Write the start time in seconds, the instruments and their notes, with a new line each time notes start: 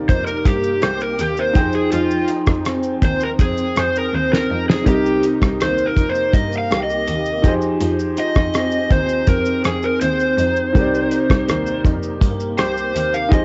Already playing: clean electric guitar C3 A#3, upright piano D#4 G4 A#4 D5
0.09 cello F2, clean electric guitar D#4, electric slide guitar C5, kick, closed hi-hat, shaker
0.27 electric slide guitar A#4, shaker
0.45 cello G2, clean electric guitar A#3, electric slide guitar G4, kick, closed hi-hat, shaker
0.63 shaker
0.81 cello C2, clean electric guitar G4, electric slide guitar C5, cross-stick, closed hi-hat, shaker
1.00 electric slide guitar A#4, shaker
1.18 cello D#2, clean electric guitar A#3, electric slide guitar G4, closed hi-hat, shaker
1.37 electric slide guitar C5, shaker
1.54 cello F2, clean electric guitar F3, upright piano D#4 G#4 G5, kick, closed hi-hat, shaker
1.59 upright piano C5
1.73 electric slide guitar G#4, shaker
1.90 cello F2, clean electric guitar F3, electric slide guitar F4, closed hi-hat, shaker
2.11 shaker
2.28 clean electric guitar D#4, closed hi-hat, shaker
2.46 cello F2, kick, cross-stick, shaker
2.65 clean electric guitar C4, cross-stick, closed hi-hat, shaker
2.83 shaker
3.02 cello D#2, clean electric guitar D#4, electric slide guitar C5, kick, closed hi-hat, shaker
3.20 electric slide guitar A#4, shaker
3.39 cello F2, clean electric guitar C4, electric slide guitar G#4, kick, closed hi-hat, shaker
3.57 shaker
3.76 cello F2, clean electric guitar G#4, electric slide guitar C5, cross-stick, closed hi-hat, shaker
3.96 electric slide guitar A#4, shaker
4.13 cello D#2, clean electric guitar C4, electric slide guitar C5
4.32 electric slide guitar A#4, snare
4.50 cello F2, clean electric guitar D#4
4.69 electric slide guitar G#4, snare
4.84 cello C2, clean electric guitar C3, upright piano D#4 G4 A#4, kick, closed hi-hat, shaker
4.88 electric slide guitar G4, upright piano D#5
5.06 shaker
5.23 clean electric guitar D#4, closed hi-hat, shaker
5.42 cello C2, kick, cross-stick, shaker
5.60 cello D#2, clean electric guitar A#3, electric slide guitar C5, cross-stick, closed hi-hat, shaker
5.78 shaker
5.86 electric slide guitar A#4
5.96 cello F2, clean electric guitar D#4, kick, closed hi-hat, shaker
6.09 electric slide guitar C5
6.15 shaker
6.33 cello G2, clean electric guitar A#3, electric slide guitar D#5, kick, closed hi-hat, shaker
6.52 shaker
6.58 electric slide guitar F5
6.71 cello C2, clean electric guitar G4, cross-stick, closed hi-hat, shaker
6.83 electric slide guitar D#5
6.90 shaker
7.07 cello D#2, clean electric guitar A#3, closed hi-hat, shaker
7.26 shaker
7.42 cello F2, clean electric guitar F3, upright piano D#4 G4 G#4, kick, closed hi-hat, shaker
7.47 upright piano C5
7.62 shaker
7.81 cello F2, clean electric guitar F3, closed hi-hat, shaker
7.99 shaker
8.17 clean electric guitar D#4, electric slide guitar D#5, closed hi-hat, shaker
8.35 cello F2, kick, cross-stick, shaker
8.54 clean electric guitar C4, cross-stick, closed hi-hat, shaker
8.72 shaker
8.90 cello D#2, clean electric guitar D#4, electric slide guitar C5, kick, closed hi-hat, shaker
9.09 shaker
9.27 cello F2, clean electric guitar C4, electric slide guitar A#4, kick, closed hi-hat, shaker
9.45 shaker
9.64 cello F2, clean electric guitar G#4, electric slide guitar G#4, cross-stick, closed hi-hat, shaker
9.83 electric slide guitar A#4, shaker
10.01 cello D#2, clean electric guitar C4, electric slide guitar C5, closed hi-hat, shaker
10.19 shaker
10.38 cello F2, clean electric guitar D#4, closed hi-hat, shaker
10.56 shaker
10.73 cello C2, clean electric guitar C3, upright piano D#4 G4 A#4, kick, closed hi-hat, shaker
10.78 upright piano D5
10.94 shaker
11.11 clean electric guitar D#4, closed hi-hat, shaker
11.30 cello C2, kick, cross-stick, shaker
11.48 cello D#2, clean electric guitar A#3, cross-stick, closed hi-hat, shaker
11.66 shaker
11.85 cello F2, clean electric guitar D#4, kick, closed hi-hat, shaker
12.03 shaker
12.21 cello G2, clean electric guitar A#3, kick, closed hi-hat, shaker
12.40 shaker
12.57 cello C2, clean electric guitar G4, electric slide guitar C5, cross-stick, closed hi-hat, shaker
12.77 shaker
12.94 cello D#2, clean electric guitar A#3, closed hi-hat, shaker
13.14 electric slide guitar F5, shaker
13.29 cello F2, clean electric guitar F3, upright piano D#4 G4 G#4, kick, closed hi-hat, shaker
13.33 upright piano C5, electric slide guitar D#5